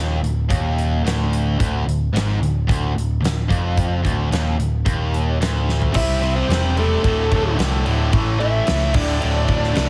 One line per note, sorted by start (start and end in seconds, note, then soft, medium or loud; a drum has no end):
0.00 0.21 D#1 medium
0.00 0.21 D#2 medium
0.22 0.48 D1 medium
0.22 0.44 D2 medium
0.22 closed hi-hat medium
0.49 1.01 D#1 medium
0.49 1.03 D#2 loud
0.49 kick medium
0.49 closed hi-hat medium
0.78 closed hi-hat medium
1.04 1.55 D1 medium
1.04 1.58 D2 medium
1.04 snare loud
1.04 closed hi-hat medium
1.33 closed hi-hat medium
1.59 1.85 D1 medium
1.59 1.85 D2 loud
1.59 kick medium
1.59 closed hi-hat medium
1.85 2.11 D1 medium
1.85 2.08 D2 medium
1.85 closed hi-hat medium
2.12 2.38 G#1 medium
2.12 2.40 G#2 loud
2.12 closed hi-hat medium
2.17 snare loud
2.40 2.66 D1 medium
2.40 2.62 D2 medium
2.40 closed hi-hat medium
2.67 2.94 D1 medium
2.67 2.94 D2 medium
2.67 kick loud
2.67 closed hi-hat medium
2.95 3.21 D1 medium
2.95 3.17 D2 medium
2.95 closed hi-hat medium
3.20 3.48 D1 medium
3.20 3.43 D2 medium
3.20 closed hi-hat medium
3.25 snare loud
3.49 4.01 F1 medium
3.49 4.02 F2 loud
3.49 kick medium
3.49 closed hi-hat medium
3.77 kick loud
3.77 closed hi-hat medium
4.02 4.30 D1 medium
4.02 4.30 D2 medium
4.02 kick medium
4.02 closed hi-hat medium
4.31 4.57 D#1 medium
4.31 4.57 D#2 medium
4.31 snare loud
4.31 closed hi-hat medium
4.57 4.84 D1 medium
4.57 4.80 D2 medium
4.57 closed hi-hat medium
4.85 5.37 D#1 medium
4.85 5.39 D#2 medium
4.85 kick loud
4.85 closed hi-hat medium
5.14 closed hi-hat medium
5.40 5.91 D1 medium
5.40 5.93 D2 medium
5.40 snare loud
5.40 closed hi-hat medium
5.69 snare medium
5.82 floor tom medium
5.93 6.40 C2 loud
5.93 6.19 C3 loud
5.93 6.19 G3 loud
5.93 6.20 C4 loud
5.93 7.03 C4 medium
5.93 6.34 E4 loud
5.93 7.03 G4 medium
5.93 7.02 D5 medium
5.93 6.38 E5 loud
5.93 kick loud
5.93 crash loud
5.93 crash medium
6.20 6.47 C3 medium
6.20 6.47 G3 medium
6.20 6.48 C4 medium
6.20 crash medium
6.36 6.74 C4 medium
6.36 6.78 C5 loud
6.48 6.94 E1 loud
6.48 6.75 C3 medium
6.48 6.76 G3 medium
6.48 6.76 C4 loud
6.48 snare loud
6.48 crash medium
6.76 7.02 C3 medium
6.76 7.02 G3 medium
6.76 7.55 A3 medium
6.76 7.02 C4 loud
6.76 7.55 A4 medium
6.76 crash medium
7.03 7.27 D1 medium
7.03 7.29 D2 medium
7.03 7.29 A2 medium
7.03 7.31 D3 medium
7.03 8.11 D4 medium
7.03 9.89 A4 medium
7.03 8.12 E5 medium
7.03 kick medium
7.03 crash medium
7.30 7.54 D1 medium
7.30 7.55 D2 medium
7.30 7.56 A2 medium
7.30 7.57 D3 medium
7.30 kick medium
7.30 crash medium
7.56 7.81 C2 loud
7.56 7.84 D2 loud
7.56 7.85 A2 medium
7.56 7.85 D3 loud
7.56 snare loud
7.56 crash medium
7.85 8.09 D1 medium
7.85 8.11 D2 medium
7.85 8.11 A2 medium
7.85 8.11 D3 loud
7.85 crash medium
8.12 8.58 A1 loud
8.12 8.38 A2 loud
8.12 8.38 E3 loud
8.12 8.39 A3 loud
8.12 8.95 A3 medium
8.12 8.94 E4 medium
8.12 kick loud
8.12 crash medium
8.39 8.65 A2 medium
8.39 8.66 E3 medium
8.39 8.67 A3 medium
8.39 8.92 E4 loud
8.39 8.95 E5 loud
8.39 crash medium
8.66 8.91 C#2 loud
8.66 8.92 A2 medium
8.66 8.93 E3 loud
8.66 8.93 A3 loud
8.66 snare loud
8.66 crash medium
8.91 9.17 D1 medium
8.91 9.19 D2 loud
8.91 9.19 A2 loud
8.91 9.19 D3 loud
8.91 9.89 D4 medium
8.91 9.89 E5 medium
8.91 kick loud
8.91 crash loud
8.96 9.89 D5 loud
9.20 9.46 D2 medium
9.20 9.46 A2 loud
9.20 9.47 D3 medium
9.20 crash medium
9.24 9.46 D1 medium
9.47 9.71 D1 medium
9.47 9.73 D2 medium
9.47 9.74 A2 medium
9.47 9.74 D3 loud
9.47 kick medium
9.47 crash medium
9.63 snare soft
9.74 9.89 C2 medium
9.74 9.89 D2 medium
9.74 9.89 A2 loud
9.74 9.89 D3 loud
9.74 snare loud
9.74 crash medium